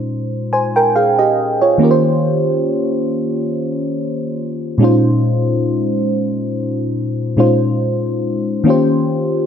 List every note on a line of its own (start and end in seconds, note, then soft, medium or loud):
0.00 0.47 A#2 medium
0.00 0.48 G#3 medium
0.00 0.48 C#4 medium
0.00 0.49 D#4 medium
0.00 0.50 F4 medium
0.00 0.50 C5 medium
0.53 0.75 C5 medium
0.53 0.75 G#5 medium
0.76 0.95 A#4 medium
0.76 0.95 G5 medium
0.96 1.18 G#4 medium
0.96 1.17 F5 medium
1.19 1.60 G4 medium
1.19 1.59 D#5 medium
1.61 1.81 F4 medium
1.61 2.02 C#5 medium
1.78 4.75 D#3 medium
1.78 4.76 A#3 medium
1.78 4.77 C#4 medium
1.78 4.77 F4 medium
1.83 4.78 G4 medium
1.83 1.90 A#4 medium
1.91 4.82 C5 medium
4.78 7.33 A#2 medium
4.78 7.33 G#3 medium
4.78 7.34 C#4 medium
4.78 7.35 D#4 medium
4.83 7.35 F4 medium
4.83 7.36 C5 medium
7.37 8.66 A#2 medium
7.37 8.66 G#3 medium
7.37 8.65 C#4 medium
7.37 8.67 D#4 medium
7.37 8.66 F4 medium
7.37 8.68 C5 medium
8.64 9.46 D#3 medium
8.64 9.46 A#3 medium
8.64 9.46 C#4 medium
8.64 9.46 F4 medium
8.69 9.46 G4 medium
8.69 9.46 C5 medium